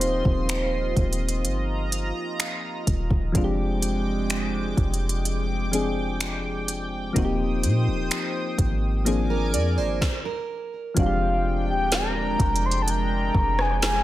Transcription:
0.00 0.22 D#1 loud
0.00 3.30 F3 medium
0.00 3.30 A#3 medium
0.00 3.31 C4 medium
0.00 3.32 D#4 medium
0.00 3.31 F4 medium
0.00 3.32 G4 medium
0.00 2.13 C5 medium
0.00 3.31 D#5 medium
0.00 1.42 C6 medium
0.00 closed hi-hat medium
0.25 0.94 D#1 medium
0.25 kick medium
0.49 finger snap loud
0.49 closed hi-hat medium
0.96 1.46 D#1 loud
0.96 kick medium
0.96 closed hi-hat soft
1.13 closed hi-hat soft
1.29 closed hi-hat medium
1.44 2.12 G1 medium
1.44 3.33 A#5 medium
1.44 closed hi-hat medium
1.92 closed hi-hat medium
2.40 finger snap loud
2.40 closed hi-hat medium
2.87 3.10 D#1 loud
2.87 kick medium
2.87 closed hi-hat medium
3.10 3.34 D#1 loud
3.10 kick loud
3.32 4.74 F1 loud
3.32 5.68 F3 medium
3.32 5.68 G#3 medium
3.32 7.12 G#3 medium
3.32 5.69 C4 medium
3.32 5.70 D4 medium
3.32 9.02 G5 medium
3.32 7.12 D6 medium
3.32 kick loud
3.32 closed hi-hat medium
3.38 3.43 F4 medium
3.44 5.74 G4 medium
3.82 closed hi-hat medium
4.30 finger snap loud
4.30 closed hi-hat medium
4.77 7.12 F1 loud
4.77 kick medium
4.77 closed hi-hat soft
4.94 closed hi-hat soft
5.09 closed hi-hat medium
5.25 closed hi-hat medium
5.72 7.12 F3 medium
5.72 7.15 G#3 medium
5.72 7.14 C4 medium
5.72 7.16 D4 medium
5.72 7.17 G#4 medium
5.72 closed hi-hat medium
6.21 finger snap loud
6.21 closed hi-hat medium
6.68 closed hi-hat medium
7.13 7.65 D#1 loud
7.13 9.01 F3 medium
7.13 9.02 A#3 medium
7.13 9.02 C4 medium
7.13 9.04 C5 medium
7.13 9.04 D#6 medium
7.13 kick loud
7.13 closed hi-hat medium
7.17 9.03 D#4 medium
7.17 7.24 F#4 medium
7.25 9.07 G4 medium
7.63 7.89 A#2 medium
7.63 closed hi-hat medium
7.87 8.10 D#1 medium
8.11 finger snap loud
8.11 closed hi-hat medium
8.58 9.56 G#1 loud
8.58 kick medium
8.58 closed hi-hat medium
9.05 10.01 F3 medium
9.05 10.01 A#3 medium
9.05 10.02 C4 medium
9.05 10.02 D4 medium
9.05 10.02 G#4 medium
9.05 10.00 A#4 medium
9.05 10.00 G#5 medium
9.05 10.00 D6 medium
9.05 closed hi-hat medium
9.30 9.53 A#4 medium
9.54 9.79 F2 loud
9.54 9.78 D5 medium
9.54 closed hi-hat medium
9.78 10.00 G#1 medium
9.78 10.23 C5 medium
10.01 kick loud
10.01 snare medium
10.25 10.93 A#4 medium
10.94 11.70 F1 medium
10.94 14.03 F3 medium
10.94 14.03 G#3 medium
10.94 14.03 C4 medium
10.94 14.03 D4 medium
10.94 11.65 F5 loud
10.94 14.03 G5 medium
10.94 kick loud
10.94 closed hi-hat medium
10.99 14.03 D4 medium
10.99 11.05 F#4 medium
11.06 14.03 G4 medium
11.69 12.36 D#1 medium
11.69 11.96 G5 medium
11.92 12.67 A#5 loud
11.92 snare loud
11.92 closed hi-hat medium
12.39 13.31 F1 loud
12.39 kick medium
12.39 closed hi-hat soft
12.56 closed hi-hat medium
12.66 12.83 C6 loud
12.71 closed hi-hat soft
12.82 12.91 A5 medium
12.88 13.63 A#5 loud
12.88 closed hi-hat medium
13.35 14.03 F1 loud
13.35 kick medium
13.59 13.84 G#5 loud
13.59 cross-stick medium
13.82 14.03 G#5 loud
13.82 snare loud
13.82 closed hi-hat medium

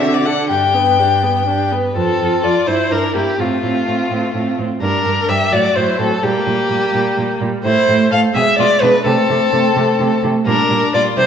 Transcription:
0.00 0.51 D3 medium
0.00 0.26 C4 soft
0.00 0.27 F#4 soft
0.00 0.15 E5 medium
0.13 0.27 D5 medium
0.25 0.49 D4 soft
0.25 0.49 A4 soft
0.25 0.48 F#5 medium
0.49 1.76 G2 soft
0.49 0.76 D4 soft
0.49 0.76 G4 soft
0.49 1.69 G5 medium
0.74 1.00 B3 soft
0.74 1.00 B4 soft
0.99 1.24 D4 soft
0.99 1.25 G4 soft
1.23 1.46 B3 soft
1.23 1.47 B4 soft
1.47 1.74 D4 soft
1.47 1.73 G4 soft
1.72 1.95 B3 soft
1.72 1.96 B4 soft
1.95 2.04 F2 soft
1.95 2.44 C4 medium
1.95 2.19 F4 soft
1.95 2.45 A4 medium
2.20 2.28 F2 soft
2.20 2.43 F4 soft
2.43 2.52 F2 soft
2.43 2.68 F4 soft
2.43 2.67 F4 soft
2.43 2.69 D5 medium
2.67 2.75 G2 soft
2.67 2.92 E4 medium
2.67 2.91 E4 soft
2.67 2.93 C5 medium
2.91 2.99 G2 soft
2.91 3.16 D4 medium
2.91 3.14 E4 soft
2.91 3.15 A#4 medium
3.15 3.23 G2 soft
3.15 3.38 A#3 soft
3.15 3.38 E4 soft
3.15 3.42 G4 medium
3.39 3.47 A2 soft
3.39 4.55 A3 soft
3.39 3.62 C4 soft
3.39 4.58 F4 medium
3.63 3.71 A2 soft
3.63 3.86 C4 soft
3.87 3.95 A2 soft
3.87 4.10 C4 soft
4.10 4.18 A2 soft
4.10 4.34 C4 soft
4.34 4.42 A2 soft
4.34 4.58 C4 soft
4.58 4.66 A2 soft
4.58 4.81 C4 soft
4.81 4.90 G2 medium
4.81 5.04 G3 soft
4.81 5.30 D4 medium
4.81 5.30 A#4 medium
5.05 5.13 G2 soft
5.05 5.28 G3 soft
5.29 5.37 G2 soft
5.29 5.52 G3 soft
5.29 5.54 G4 medium
5.29 5.54 E5 medium
5.52 5.60 A2 medium
5.52 5.75 F#3 soft
5.52 5.77 F#4 medium
5.52 5.77 D5 medium
5.76 5.84 A2 soft
5.76 5.99 F#3 soft
5.76 5.99 E4 medium
5.76 5.99 C5 medium
5.99 6.07 A2 medium
5.99 6.22 F#3 soft
5.99 6.07 C4 soft
5.99 6.25 A4 medium
6.23 6.31 A#2 medium
6.23 6.46 G3 medium
6.23 7.39 A#3 medium
6.23 7.41 G4 medium
6.46 6.54 A#2 medium
6.46 6.70 G3 soft
6.70 6.78 A#2 soft
6.70 6.93 G3 soft
6.94 7.02 A#2 medium
6.94 7.17 G3 soft
7.17 7.25 A#2 medium
7.17 7.40 G3 soft
7.41 7.49 A#2 medium
7.41 7.64 G3 soft
7.64 7.73 A2 medium
7.64 7.88 A3 medium
7.64 8.08 E4 medium
7.64 8.08 C5 medium
7.88 7.96 A2 medium
7.88 8.11 A3 soft
8.11 8.20 A2 soft
8.11 8.34 A3 medium
8.11 8.19 A4 medium
8.11 8.20 F5 medium
8.35 8.43 B2 medium
8.35 8.58 G#3 medium
8.35 8.43 G#4 medium
8.35 8.58 E5 medium
8.58 8.67 B2 medium
8.58 8.81 G#3 soft
8.58 8.67 F4 medium
8.58 8.83 D5 medium
8.81 8.90 B2 medium
8.81 9.04 G#3 soft
8.81 8.90 D4 medium
8.81 9.05 B4 medium
9.05 9.13 C3 medium
9.05 9.28 A3 medium
9.05 10.21 C4 medium
9.05 10.21 A4 medium
9.29 9.37 C3 medium
9.29 9.52 A3 soft
9.52 9.61 C3 medium
9.52 9.75 A3 medium
9.76 9.84 C3 medium
9.76 9.99 A3 medium
9.99 10.07 C3 medium
9.99 10.23 A3 medium
10.23 10.31 C3 medium
10.23 10.46 A3 soft
10.46 10.55 A#2 medium
10.46 10.70 G3 medium
10.46 10.96 D4 medium
10.46 10.91 A#4 medium
10.70 10.78 A#2 medium
10.70 10.94 G3 soft
10.94 11.02 A#2 soft
10.94 11.17 G3 soft
10.94 11.18 F4 medium
10.94 11.02 D5 medium
11.17 11.25 C3 medium
11.17 11.27 G3 medium
11.17 11.27 E4 medium
11.17 11.27 C5 medium

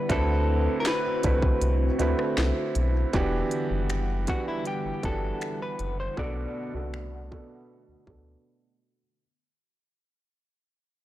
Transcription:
0.00 3.09 E4 medium
0.00 0.11 B4 medium
0.09 0.68 D2 loud
0.09 1.01 D3 loud
0.09 1.01 A3 medium
0.09 3.11 C4 medium
0.09 1.01 C4 medium
0.09 1.02 E4 loud
0.09 3.11 F#4 medium
0.09 1.02 F#4 medium
0.09 0.80 A4 medium
0.09 3.11 B4 medium
0.09 1.02 B4 loud
0.09 kick loud
0.09 closed hi-hat medium
0.80 0.86 A#4 medium
0.85 1.96 B4 medium
0.85 snare loud
0.85 closed hi-hat medium
1.23 1.53 C2 medium
1.23 1.84 D3 medium
1.23 1.85 A3 medium
1.23 1.85 C4 medium
1.23 1.85 E4 medium
1.23 1.85 F#4 medium
1.23 1.86 B4 medium
1.23 kick loud
1.23 closed hi-hat medium
1.42 kick loud
1.61 1.91 C2 loud
1.61 closed hi-hat medium
1.99 2.14 D2 medium
1.99 2.91 D3 medium
1.99 2.91 A3 medium
1.99 2.91 C4 medium
1.99 2.91 E4 medium
1.99 2.92 F#4 medium
1.99 2.92 B4 loud
1.99 closed hi-hat medium
2.19 cross-stick loud
2.38 2.52 C2 loud
2.38 snare loud
2.75 3.05 B1 loud
2.75 closed hi-hat medium
3.13 3.43 E1 loud
3.13 9.17 D3 medium
3.13 4.05 E3 loud
3.13 6.14 G3 medium
3.13 4.05 B3 loud
3.13 4.05 D4 loud
3.13 6.14 E4 medium
3.13 4.06 F#4 loud
3.13 4.06 G4 loud
3.13 9.17 F#5 medium
3.13 kick loud
3.13 closed hi-hat medium
3.51 closed hi-hat medium
3.71 4.29 F#1 medium
3.90 finger snap loud
3.90 closed hi-hat medium
4.27 4.88 E3 medium
4.27 4.89 B3 medium
4.27 4.89 D4 medium
4.27 4.89 F#4 medium
4.27 4.48 F#4 medium
4.27 4.90 G4 medium
4.27 kick medium
4.27 closed hi-hat medium
4.48 4.67 E4 medium
4.65 5.05 G4 medium
4.65 closed hi-hat medium
4.85 4.92 G1 soft
5.03 5.33 G1 medium
5.03 5.95 E3 medium
5.03 5.95 B3 medium
5.03 5.95 D4 medium
5.03 5.96 F#4 medium
5.03 5.96 G4 medium
5.03 5.62 A4 medium
5.03 kick medium
5.03 closed hi-hat medium
5.41 finger snap loud
5.41 closed hi-hat medium
5.62 6.00 B4 medium
5.79 6.09 F#1 medium
5.79 closed hi-hat medium
6.00 6.19 C5 medium
6.17 6.47 B1 loud
6.17 6.63 B2 loud
6.17 9.18 A3 medium
6.17 9.18 B3 medium
6.17 6.63 B3 medium
6.17 6.64 D4 medium
6.17 6.64 F#4 medium
6.17 6.64 A4 loud
6.17 8.42 D5 medium
6.17 kick loud
6.74 7.33 C2 medium
6.74 7.20 B2 medium
6.74 7.20 B3 medium
6.74 7.21 D4 medium
6.74 7.21 F#4 medium
6.74 7.21 A4 medium
6.94 finger snap loud
7.31 7.92 B2 medium
7.31 7.93 B3 medium
7.31 7.93 D4 medium
7.31 7.93 F#4 medium
7.31 7.94 A4 medium
7.31 kick medium
7.88 7.96 D2 soft
8.07 8.36 D2 medium
8.07 8.98 B2 medium
8.07 8.99 B3 medium
8.07 8.99 D4 medium
8.07 9.00 F#4 medium
8.07 9.00 A4 medium
8.07 kick medium

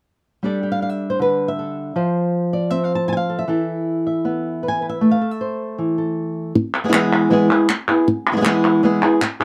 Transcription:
0.43 1.93 G3 soft
0.43 1.94 D4 soft
0.43 0.62 G4 soft
0.43 1.10 A4 soft
0.43 0.71 D5 soft
0.63 1.94 G4 soft
0.72 0.81 F5 medium
0.82 0.90 F5 soft
0.90 1.09 E5 medium
1.10 1.21 C5 medium
1.19 1.93 D3 soft
1.19 1.48 B4 medium
1.48 2.06 E5 medium
1.59 1.96 A4 soft
1.96 3.46 F3 medium
1.96 2.53 C5 soft
2.53 2.70 D5 medium
2.70 3.46 C4 soft
2.70 2.82 E5 medium
2.84 2.94 F5 medium
2.95 3.07 A5 medium
3.08 3.10 G#5 medium
3.08 3.11 A5 medium
3.13 3.16 G#5 medium
3.17 3.38 F5 medium
3.29 3.49 A4 soft
3.39 3.97 E5 medium
3.48 5.14 E3 medium
3.48 5.14 E4 soft
3.48 5.00 A4 soft
4.07 4.68 E5 soft
4.25 4.99 B3 soft
4.63 4.81 B4 soft
4.68 4.89 G#5 medium
4.82 4.99 B4 soft
4.89 5.11 E5 medium
5.01 6.52 A3 soft
5.11 5.31 F5 medium
5.21 5.97 A4 soft
5.31 6.32 E5 medium
5.41 6.53 C5 soft
5.78 6.52 E3 soft
5.98 6.53 A4 soft
6.55 muted nylon-string guitar stroke medium
6.84 6.87 G#3 soft
6.84 6.87 B3 soft
6.84 6.88 E4 medium
6.84 6.88 G#4 medium
6.88 6.92 G#3 medium
6.88 6.92 B3 medium
6.88 6.93 E4 medium
6.88 6.93 G#4 medium
6.93 7.29 E3 medium
6.93 7.30 G#3 medium
6.93 7.31 B3 medium
6.93 7.31 E4 medium
6.93 7.31 G#4 medium
6.93 clap medium
7.30 7.49 E3 medium
7.30 7.49 G#3 medium
7.30 7.50 B3 medium
7.30 7.50 E4 medium
7.30 7.49 G#4 medium
7.50 7.68 B3 soft
7.50 7.68 E4 soft
7.50 7.68 G#4 medium
7.69 muted nylon-string guitar stroke medium
7.69 clap medium
7.88 8.08 B3 soft
7.88 8.07 E4 soft
7.88 8.06 G#4 soft
8.08 muted nylon-string guitar stroke medium
8.32 8.36 G#3 soft
8.32 8.36 B3 soft
8.32 8.36 E4 soft
8.32 8.37 G#4 medium
8.37 8.40 G#3 medium
8.37 8.40 B3 medium
8.37 8.41 E4 medium
8.37 8.41 G#4 medium
8.41 8.45 G#3 medium
8.41 8.45 B3 medium
8.41 8.46 E4 medium
8.41 8.45 G#4 medium
8.41 clap medium
8.45 8.82 E3 medium
8.45 8.83 G#3 medium
8.45 8.83 B3 medium
8.45 8.83 E4 medium
8.45 8.83 G#4 medium
8.83 9.02 E3 medium
8.83 9.02 G#3 medium
8.83 9.02 B3 medium
8.83 9.03 E4 medium
8.83 9.01 G#4 medium
9.03 9.21 B3 soft
9.03 9.21 E4 soft
9.03 9.21 G#4 medium
9.21 muted nylon-string guitar stroke medium
9.21 clap medium
9.40 9.44 E4 soft
9.40 9.44 G#4 soft

